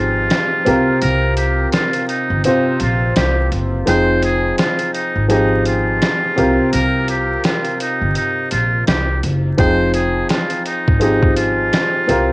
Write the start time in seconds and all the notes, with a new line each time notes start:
Already playing: G#1 F3 C4 D#4 F4 G4 G#4 G5
0.30 snare, closed hi-hat
0.65 C2 C3 C4 F4 G4 A#4, closed hi-hat
1.01 C2 A#4, closed hi-hat
1.37 G4, closed hi-hat
1.72 F4, snare, closed hi-hat
1.93 closed hi-hat
2.08 D#4, closed hi-hat
2.30 G1
2.44 C3 C4 D#4 F4 G4 C5, closed hi-hat
2.80 A#1 F4, closed hi-hat
3.16 C2 G4, snare, closed hi-hat
3.52 F#1, closed hi-hat
3.86 F1 F3 C4 D#4 G#4 C5 G5, closed hi-hat
4.23 G#4, closed hi-hat
4.58 F4, snare, closed hi-hat
4.79 closed hi-hat
4.93 D#4, closed hi-hat
5.16 G#1
5.28 F3 C4 D#4 G4 G#4, closed hi-hat
5.65 F4, closed hi-hat
6.02 snare, closed hi-hat
6.36 C2 C3 C4 F4 G4 A#4, closed hi-hat
6.73 C2 A#4, closed hi-hat
7.08 G4, closed hi-hat
7.44 F4, snare, closed hi-hat
7.64 closed hi-hat
7.80 D#4, closed hi-hat
8.01 G1
8.15 D#4, closed hi-hat
8.51 A#1 F4, closed hi-hat
8.87 C2 G4, snare, closed hi-hat
9.23 F#1, closed hi-hat
9.57 F1 F3 C4 D#4 G#4 C5 G5, kick, closed hi-hat
9.94 G#4, closed hi-hat
10.29 F4, snare, closed hi-hat
10.50 closed hi-hat
10.66 D#4, closed hi-hat
10.88 G#1, kick
11.00 F3 C4 D#4 G4 G#4, closed hi-hat
11.23 kick
11.37 F4, closed hi-hat
11.73 snare, closed hi-hat
12.07 C2 C3 C4 F4 G4 A#4, closed hi-hat